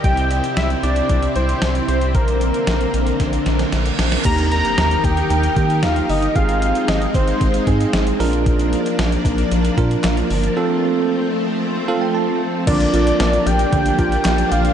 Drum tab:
CC |----------------|----------------|x---------------|----------------|
HH |xxxxxxxxxxxxxxxx|xxxxxxxxxxxxxxxx|xxxxxxxxxxxxxxox|xxxxxxxxxxxxxxox|
CP |----------------|----------------|----------------|----------------|
SD |----o-------o---|----o---o-ooo-oo|----o-------o---|----o-------o---|
BD |o-------o-------|o-------o-------|o-----o---o-----|o-----o-o-o-----|

CC |----------------|----------------|x---------------|
HH |xxxxxxxxxxxxxxox|----------------|xxxxxxxxxxxxxxxx|
CP |------------x---|----------------|------------x---|
SD |----o-------o---|----------------|----o-------o---|
BD |o-----o---o-----|----------------|o-------o-o-----|